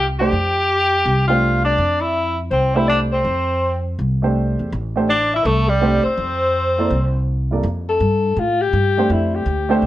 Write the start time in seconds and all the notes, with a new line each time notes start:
Already playing: C2
0.19 A3 D4 G4 C5 G5
0.32 F2
1.05 C2
1.27 A3 D4 F4 G4 C5 F5
1.64 D4 D5
1.78 F2
2.01 E4 E5
2.51 C2 C4 C5
2.75 A3 D4 E4 G4 C5 E5
2.88 D4 D5
3.12 C4 C5
3.25 F2
3.99 C2
4.22 A3 D4 G4 C5
4.59 E2
4.72 A1
4.96 A3 D4 G4 C5
5.09 D4 D5
5.34 E4 E5
5.44 C2 A3 A4
5.67 G3 G4
5.80 A3 D4 G4 C5
6.03 C4 C5, muted upright bass stroke
6.17 F2
6.78 A#3 E4 A4 D5
6.90 C2
7.51 G2 A#3 E4 A4 D5
7.63 F2
7.89 A4
8.00 G2
8.36 A2 F4
8.61 G4
8.73 G2
8.97 A3 D4 G4 C5
9.10 F2 E4
9.35 G4
9.46 D2
9.69 A3 D4 G4 C5
9.82 C2